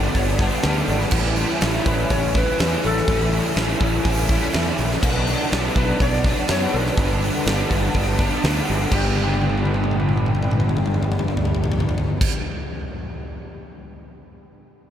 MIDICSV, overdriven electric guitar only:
0, 0, Header, 1, 2, 480
1, 0, Start_track
1, 0, Tempo, 486618
1, 1122, Time_signature, 4, 2, 24, 8
1, 14697, End_track
2, 0, Start_track
2, 0, Title_t, "Overdriven electric guitar"
2, 0, Program_c, 0, 29
2, 0, Note_on_c, 0, 50, 83
2, 0, Note_on_c, 0, 55, 60
2, 0, Note_on_c, 0, 59, 75
2, 0, Note_on_c, 0, 62, 69
2, 154, Note_off_c, 0, 50, 0
2, 380, Note_off_c, 0, 62, 0
2, 391, Note_on_c, 0, 62, 79
2, 397, Note_off_c, 0, 59, 0
2, 409, Note_on_c, 0, 59, 65
2, 417, Note_off_c, 0, 55, 0
2, 421, Note_on_c, 0, 55, 60
2, 634, Note_off_c, 0, 55, 0
2, 635, Note_on_c, 0, 50, 72
2, 638, Note_on_c, 0, 55, 84
2, 639, Note_off_c, 0, 59, 0
2, 650, Note_on_c, 0, 59, 81
2, 652, Note_off_c, 0, 62, 0
2, 664, Note_on_c, 0, 62, 89
2, 1104, Note_off_c, 0, 50, 0
2, 1112, Note_off_c, 0, 59, 0
2, 1113, Note_on_c, 0, 45, 91
2, 1118, Note_off_c, 0, 62, 0
2, 1119, Note_on_c, 0, 52, 93
2, 1127, Note_off_c, 0, 55, 0
2, 1131, Note_on_c, 0, 55, 89
2, 1136, Note_on_c, 0, 64, 103
2, 1141, Note_on_c, 0, 61, 93
2, 1352, Note_off_c, 0, 64, 0
2, 1356, Note_on_c, 0, 64, 79
2, 1371, Note_off_c, 0, 61, 0
2, 1375, Note_on_c, 0, 61, 73
2, 1380, Note_off_c, 0, 55, 0
2, 1384, Note_on_c, 0, 55, 62
2, 1597, Note_off_c, 0, 52, 0
2, 1601, Note_on_c, 0, 52, 79
2, 1605, Note_off_c, 0, 55, 0
2, 1609, Note_on_c, 0, 55, 87
2, 1619, Note_off_c, 0, 61, 0
2, 1623, Note_on_c, 0, 61, 79
2, 1624, Note_off_c, 0, 64, 0
2, 1628, Note_on_c, 0, 64, 88
2, 1639, Note_off_c, 0, 45, 0
2, 1839, Note_off_c, 0, 64, 0
2, 1842, Note_on_c, 0, 64, 81
2, 1850, Note_off_c, 0, 61, 0
2, 1854, Note_on_c, 0, 61, 70
2, 1862, Note_off_c, 0, 55, 0
2, 1865, Note_on_c, 0, 55, 68
2, 2307, Note_off_c, 0, 64, 0
2, 2319, Note_on_c, 0, 64, 88
2, 2326, Note_off_c, 0, 61, 0
2, 2332, Note_off_c, 0, 55, 0
2, 2338, Note_on_c, 0, 61, 67
2, 2344, Note_on_c, 0, 55, 56
2, 2544, Note_off_c, 0, 55, 0
2, 2545, Note_off_c, 0, 52, 0
2, 2549, Note_on_c, 0, 52, 83
2, 2556, Note_on_c, 0, 55, 74
2, 2558, Note_off_c, 0, 61, 0
2, 2570, Note_on_c, 0, 61, 86
2, 2572, Note_off_c, 0, 64, 0
2, 2584, Note_on_c, 0, 64, 82
2, 3043, Note_off_c, 0, 52, 0
2, 3044, Note_on_c, 0, 45, 87
2, 3049, Note_off_c, 0, 55, 0
2, 3052, Note_off_c, 0, 61, 0
2, 3055, Note_on_c, 0, 52, 96
2, 3060, Note_off_c, 0, 64, 0
2, 3061, Note_on_c, 0, 55, 96
2, 3064, Note_on_c, 0, 61, 96
2, 3072, Note_on_c, 0, 64, 100
2, 3276, Note_off_c, 0, 64, 0
2, 3288, Note_on_c, 0, 64, 78
2, 3291, Note_off_c, 0, 61, 0
2, 3303, Note_on_c, 0, 61, 66
2, 3305, Note_off_c, 0, 55, 0
2, 3316, Note_on_c, 0, 55, 65
2, 3501, Note_off_c, 0, 52, 0
2, 3512, Note_on_c, 0, 52, 78
2, 3515, Note_off_c, 0, 55, 0
2, 3523, Note_off_c, 0, 45, 0
2, 3526, Note_off_c, 0, 61, 0
2, 3526, Note_on_c, 0, 55, 77
2, 3537, Note_off_c, 0, 64, 0
2, 3537, Note_on_c, 0, 61, 79
2, 3549, Note_on_c, 0, 64, 98
2, 3735, Note_off_c, 0, 64, 0
2, 3747, Note_on_c, 0, 64, 81
2, 3753, Note_off_c, 0, 61, 0
2, 3761, Note_off_c, 0, 55, 0
2, 3765, Note_on_c, 0, 61, 74
2, 3772, Note_on_c, 0, 55, 67
2, 3997, Note_off_c, 0, 52, 0
2, 4230, Note_off_c, 0, 64, 0
2, 4242, Note_on_c, 0, 64, 82
2, 4244, Note_off_c, 0, 61, 0
2, 4256, Note_on_c, 0, 61, 76
2, 4257, Note_off_c, 0, 55, 0
2, 4269, Note_on_c, 0, 55, 70
2, 4470, Note_off_c, 0, 55, 0
2, 4472, Note_on_c, 0, 52, 82
2, 4482, Note_on_c, 0, 55, 92
2, 4484, Note_off_c, 0, 61, 0
2, 4492, Note_off_c, 0, 64, 0
2, 4495, Note_on_c, 0, 61, 88
2, 4504, Note_on_c, 0, 64, 89
2, 4943, Note_off_c, 0, 52, 0
2, 4948, Note_off_c, 0, 55, 0
2, 4954, Note_off_c, 0, 61, 0
2, 4959, Note_off_c, 0, 64, 0
2, 4961, Note_on_c, 0, 47, 78
2, 4970, Note_on_c, 0, 54, 96
2, 4982, Note_on_c, 0, 59, 106
2, 4989, Note_on_c, 0, 62, 104
2, 5196, Note_off_c, 0, 62, 0
2, 5200, Note_on_c, 0, 62, 83
2, 5211, Note_off_c, 0, 59, 0
2, 5215, Note_on_c, 0, 59, 70
2, 5218, Note_off_c, 0, 54, 0
2, 5230, Note_on_c, 0, 54, 68
2, 5429, Note_off_c, 0, 47, 0
2, 5440, Note_off_c, 0, 54, 0
2, 5441, Note_on_c, 0, 47, 86
2, 5452, Note_on_c, 0, 54, 77
2, 5458, Note_off_c, 0, 59, 0
2, 5462, Note_on_c, 0, 59, 94
2, 5464, Note_off_c, 0, 62, 0
2, 5468, Note_on_c, 0, 62, 82
2, 5677, Note_off_c, 0, 62, 0
2, 5681, Note_on_c, 0, 62, 84
2, 5692, Note_off_c, 0, 59, 0
2, 5695, Note_off_c, 0, 54, 0
2, 5696, Note_on_c, 0, 59, 83
2, 5707, Note_on_c, 0, 54, 62
2, 5922, Note_off_c, 0, 47, 0
2, 6165, Note_off_c, 0, 62, 0
2, 6169, Note_on_c, 0, 62, 85
2, 6187, Note_off_c, 0, 59, 0
2, 6188, Note_off_c, 0, 54, 0
2, 6191, Note_on_c, 0, 59, 65
2, 6200, Note_on_c, 0, 54, 65
2, 6405, Note_off_c, 0, 54, 0
2, 6409, Note_on_c, 0, 47, 87
2, 6417, Note_on_c, 0, 54, 92
2, 6429, Note_off_c, 0, 59, 0
2, 6430, Note_off_c, 0, 62, 0
2, 6433, Note_on_c, 0, 59, 94
2, 6434, Note_on_c, 0, 62, 99
2, 6871, Note_off_c, 0, 47, 0
2, 6875, Note_off_c, 0, 54, 0
2, 6886, Note_on_c, 0, 43, 100
2, 6896, Note_on_c, 0, 50, 97
2, 6903, Note_on_c, 0, 55, 96
2, 6905, Note_off_c, 0, 59, 0
2, 6908, Note_off_c, 0, 62, 0
2, 6908, Note_on_c, 0, 59, 95
2, 6912, Note_on_c, 0, 62, 98
2, 7116, Note_off_c, 0, 62, 0
2, 7128, Note_off_c, 0, 59, 0
2, 7128, Note_on_c, 0, 62, 77
2, 7140, Note_on_c, 0, 59, 81
2, 7142, Note_off_c, 0, 55, 0
2, 7154, Note_on_c, 0, 55, 62
2, 7358, Note_off_c, 0, 50, 0
2, 7364, Note_off_c, 0, 43, 0
2, 7364, Note_off_c, 0, 55, 0
2, 7369, Note_on_c, 0, 50, 89
2, 7374, Note_off_c, 0, 59, 0
2, 7376, Note_on_c, 0, 55, 75
2, 7382, Note_off_c, 0, 62, 0
2, 7386, Note_on_c, 0, 59, 80
2, 7394, Note_on_c, 0, 62, 92
2, 7588, Note_off_c, 0, 62, 0
2, 7597, Note_off_c, 0, 59, 0
2, 7600, Note_on_c, 0, 62, 86
2, 7609, Note_on_c, 0, 59, 68
2, 7614, Note_off_c, 0, 55, 0
2, 7625, Note_on_c, 0, 55, 55
2, 7845, Note_off_c, 0, 50, 0
2, 8071, Note_off_c, 0, 62, 0
2, 8082, Note_on_c, 0, 62, 74
2, 8083, Note_off_c, 0, 59, 0
2, 8094, Note_on_c, 0, 59, 71
2, 8100, Note_off_c, 0, 55, 0
2, 8111, Note_on_c, 0, 55, 58
2, 8309, Note_on_c, 0, 50, 79
2, 8311, Note_off_c, 0, 55, 0
2, 8322, Note_off_c, 0, 59, 0
2, 8323, Note_on_c, 0, 55, 78
2, 8330, Note_off_c, 0, 62, 0
2, 8334, Note_on_c, 0, 59, 86
2, 8342, Note_on_c, 0, 62, 89
2, 8779, Note_off_c, 0, 55, 0
2, 8781, Note_off_c, 0, 50, 0
2, 8791, Note_on_c, 0, 55, 94
2, 8793, Note_off_c, 0, 59, 0
2, 8797, Note_off_c, 0, 62, 0
2, 8804, Note_on_c, 0, 59, 92
2, 8816, Note_on_c, 0, 62, 107
2, 8830, Note_on_c, 0, 67, 91
2, 12243, Note_off_c, 0, 55, 0
2, 12257, Note_off_c, 0, 59, 0
2, 12268, Note_off_c, 0, 62, 0
2, 12282, Note_off_c, 0, 67, 0
2, 14697, End_track
0, 0, End_of_file